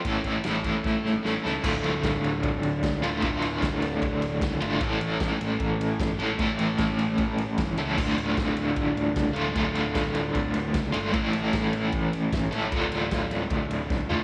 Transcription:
<<
  \new Staff \with { instrumentName = "Overdriven electric guitar" } { \time 4/4 \key a \phrygian \tempo 4 = 152 <a, e a cis' e' a'>8 <a cis' e' a'>8 <a, e a cis' e' a'>8 <a cis' e' a'>4. <a cis' e' a'>8 <a cis' e' a'>8 | \key d \minor <d, a, d a f'>2.~ <d, a, d a f'>8 <d, a, d a f'>8 | <d, a, d a f'>2.~ <d, a, d a f'>8 <d, a, d a f'>8 | <a, e a cis' e' a'>2.~ <a, e a cis' e' a'>8 <a, e a cis' e' a'>8 |
<a, e a cis' e' a'>2.~ <a, e a cis' e' a'>8 <a, e a cis' e' a'>8 | <d, a, d a f'>2.~ <d, a, d a f'>8 <d, a, d a f'>8 | <d, a, d a f'>2.~ <d, a, d a f'>8 <d, a, d a f'>8 | <a, e a cis' e' a'>2.~ <a, e a cis' e' a'>8 <a, e a cis' e' a'>8 |
<d, a, d a f'>2.~ <d, a, d a f'>8 <d, a, d a f'>8 | }
  \new Staff \with { instrumentName = "Picked electric bass" } { \clef bass \time 4/4 \key a \phrygian a,,8 a,,8 a,,4 a,,8 a,,8 a,,8 cis,8 | \key d \minor d,,8 d,,8 d,,8 d,,8 d,,8 d,,8 cis,8 d,,8 | d,,8 d,,8 d,,4 d,,8 d,,8 cis,8 g,,8 | a,,8 a,,8 a,,8 a,,8 a,,8 a,,8 g,,8 a,,8 |
a,,8 a,,8 a,,4 a,,8 a,,8 g,,8 cis,8 | d,,8 d,,8 d,,8 d,,8 d,,8 d,,8 cis,8 d,,8 | d,,8 d,,8 d,,4 d,,8 d,,8 cis,8 g,,8 | a,,8 a,,8 a,,8 a,,8 a,,8 a,,8 g,,8 a,,8 |
d,,8 d,,8 d,,4 d,,8 d,,8 cis,8 d,,8 | }
  \new DrumStaff \with { instrumentName = "Drums" } \drummode { \time 4/4 <bd cymr>8 <bd cymr>8 <cymr sn>8 <bd cymr>8 <bd sn>8 sn8 sn8 sn8 | <cymc bd>8 cymr8 <bd cymr sn>8 cymr8 <bd cymr>8 cymr8 <bd cymr sn>8 cymr8 | <bd cymr>8 cymr8 <bd cymr sn>8 cymr8 <bd cymr>8 cymr8 <bd cymr sn>8 cymr8 | <bd cymr>8 cymr8 <bd cymr sn>8 cymr8 <bd cymr>8 cymr8 <bd cymr sn>8 cymr8 |
<bd cymr>8 cymr8 <bd cymr sn>8 cymr8 <bd cymr>8 cymr8 <bd cymr sn>8 cymr8 | <cymc bd>8 cymr8 <bd cymr sn>8 cymr8 <bd cymr>8 cymr8 <bd cymr sn>8 cymr8 | <bd cymr>8 cymr8 <bd cymr sn>8 cymr8 <bd cymr>8 cymr8 <bd cymr sn>8 cymr8 | <bd cymr>8 cymr8 <bd cymr sn>8 cymr8 <bd cymr>8 cymr8 <bd cymr sn>8 cymr8 |
<bd cymr>8 cymr8 <bd cymr sn>8 cymr8 <bd cymr>8 cymr8 <bd sn>8 tomfh8 | }
>>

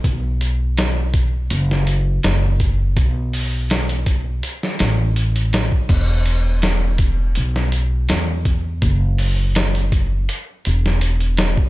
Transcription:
<<
  \new Staff \with { instrumentName = "Upright bass" } { \clef bass \time 4/4 \key e \mixolydian \tempo 4 = 82 b,,2 fis,,4 fis,,4 | b,,2 r8 a,,4 r8 | e,,2 b,,4 e,4 | fis,,2 r8 e,,4 r8 | }
  \new DrumStaff \with { instrumentName = "Drums" } \drummode { \time 4/4 <hh bd>8 hh8 <hh sn>8 <hh bd>8 hh16 sn16 hh8 <hh sn>8 <hh bd>8 | <hh bd>8 hho8 <hh sn>16 hh16 <hh bd>8 hh16 sn16 <hh sn>8 hh16 hh16 <hh sn>16 bd16 | <cymc hh bd>8 hh8 <hh sn>8 <hh bd>8 hh16 sn16 hh8 <hh sn>8 <hh bd>8 | <hh bd>8 hho8 <hh sn>16 hh16 <hh bd>8 hh8 hh16 sn16 hh16 hh16 <hh sn>16 bd16 | }
>>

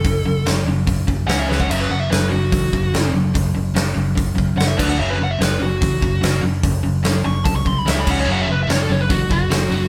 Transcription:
<<
  \new Staff \with { instrumentName = "Lead electric guitar" } { \time 4/4 \key fis \minor \tempo 4 = 146 a'4 r2 fis''16 e''16 b'16 fis''16 | e''16 b'16 fis''16 e''16 b'8 fis'2 r8 | r2. fis''16 e''16 b'16 fis''16 | e''16 b'16 fis''16 e''16 b'8 fis'2 r8 |
r4. cis'''8 a''16 cis'''16 bis''16 b''16 e''16 b''16 fis''16 cis''16 | fis''16 e''16 b'16 e''16 cis''16 a'16 cis''16 b'16 fis'8 fis'4. | }
  \new Staff \with { instrumentName = "Distorted electric guitar" } { \clef bass \time 4/4 \key fis \minor r1 | r1 | r1 | r1 |
r1 | <fis, cis fis>8 <fis, cis>8 <fis, cis>8 <fis, cis>8 <fis, cis>8 <fis, cis>8 <fis, cis>8 <fis, cis>8 | }
  \new Staff \with { instrumentName = "Overdriven electric guitar" } { \clef bass \time 4/4 \key fis \minor <fis, cis>8 <fis, cis>8 <fis, cis>8 <fis, cis>8 <fis, cis>8 <fis, cis>8 <cis gis cis'>8 <cis gis cis'>8 | <fis, cis fis>8 <fis, cis>8 <fis, cis>8 <fis, cis>8 <fis, cis>8 <fis, cis>8 <fis, cis>8 <fis, cis>8 | <fis, cis>8 <fis, cis>8 <fis, cis>8 <fis, cis>8 <fis, cis>8 <fis, cis>8 <fis, cis>8 <d a d'>8 | <fis, cis fis>8 <fis, cis>8 <fis, cis>8 <fis, cis>8 <fis, cis>8 <fis, cis>8 <fis, cis>8 <fis, cis>8 |
<fis, cis>8 <fis, cis>8 <fis, cis>8 <fis, cis>8 <fis, cis>8 <fis, cis>8 <cis gis cis'>8 <cis gis cis'>8 | <fis, cis fis>8 <fis, cis>8 <fis, cis>8 <fis, cis>8 <fis, cis>8 <fis, cis>8 <fis, cis>8 <fis, cis>8 | }
  \new Staff \with { instrumentName = "Picked electric bass" } { \clef bass \time 4/4 \key fis \minor fis,,8 fis,,8 fis,,8 fis,,8 fis,,4 cis,8 cis,8 | fis,,8 fis,,8 fis,,8 fis,,8 a,,8 fis,,8 fis,,8 fis,,8 | fis,,8 fis,,8 fis,,8 fis,,8 fis,,4 fis,,8 d,8 | fis,,8 fis,,8 fis,,8 fis,,8 a,,8 fis,,8 fis,,8 fis,,8 |
fis,,8 fis,,8 fis,,8 fis,,8 bis,,4 cis,8 cis,8 | fis,,8 fis,,8 fis,,8 fis,,8 a,,8 fis,,8 fis,,8 fis,,8 | }
  \new DrumStaff \with { instrumentName = "Drums" } \drummode { \time 4/4 <hho bd>4 <hho sn>4 <hho bd>8 bd8 <hho sn>8 sn16 bd16 | cymc4 <hho sn>4 <hho bd>8 bd8 <hho sn>4 | <hho bd>4 <hho sn>4 <hho bd>8 bd8 <hho sn>8 <cymc bd>8 | r4 <hho sn>4 <hho bd>8 bd8 <hho sn>4 |
<hho bd>4 <hho sn>4 <hho bd>8 bd8 <hho sn>8 <cymc bd>8 | r4 <hho sn>4 <hho bd>8 bd8 <hho sn>4 | }
>>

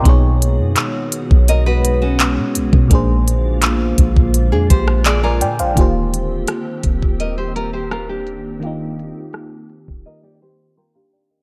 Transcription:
<<
  \new Staff \with { instrumentName = "FM electric piano" } { \time 4/4 \key ees \major \tempo 4 = 84 << { <bes' ees''>16 r2. r8. | r2. r16 <d'' aes''>16 <d'' g''>16 <c'' f''>16~ | <c'' f''>16 r2. r8. | r2. <g'' c'''>16 <f'' bes''>16 <d'' g''>16 <bes' ees''>16 | } \\ { <b, b dis' gis' des''>1 | <bes, bes d' aes' c''>1 | <ees bes f' g' c''>1 | <ees bes ees' f' g'>1 | } >> }
  \new Staff \with { instrumentName = "Nylon-string guitar" } { \time 4/4 \key ees \major r2 <bes' dis''>16 <fis' b'>8 <des' fis'>4~ <des' fis'>16 | r2 r16 <d' aes'>16 <g' c''>8 <aes' d''>16 <f' bes'>8. | r2 <bes' ees''>16 <g' c''>16 <f' bes'>16 <g' c''>16 <f' bes'>16 <d' g'>8.~ | <d' g'>8. r4 r16 <bes' ees''>16 <g' d''>16 <g' c''>8 <f' bes'>16 <d' g'>8. | }
  \new Staff \with { instrumentName = "Ambient pad" } { \time 4/4 \key ees \major << { <dis b fis'>1 | <d bes f'>1 | <ees c' g'>1~ | <ees c' g'>1 | } \\ { gis1~ | gis1 | bes1~ | bes1 | } >> }
  \new Staff \with { instrumentName = "808-style bass" } { \clef bass \time 4/4 \key ees \major b,,8. fis,16 r8. b,,4. b,16 b,,16 b,16 | bes,,4. bes,,16 bes,,8 f,16 bes,,4 bes,16 bes,,16 | ees,,4 r8 ees,,16 ees,,2~ ees,,16~ | ees,,8. r4 d,,16 r2 | }
  \new DrumStaff \with { instrumentName = "Drums" } \drummode { \time 4/4 <hh bd>8 hh8 <hc hh>8 hh16 bd16 hh8 hh8 <hc hh>8 hh16 bd16 | <hh bd>8 hh8 <hc hh>8 <hh bd>16 bd16 hh8 <hh bd>16 ss16 <hc hh>8 hh16 hh16 | <hh bd>8 hh8 <hh ss>8 <hh bd>16 bd16 hh8 hh8 <hh ss>8 hh8 | hh8 hh8 <hh ss>8 hh16 bd16 r4 r4 | }
>>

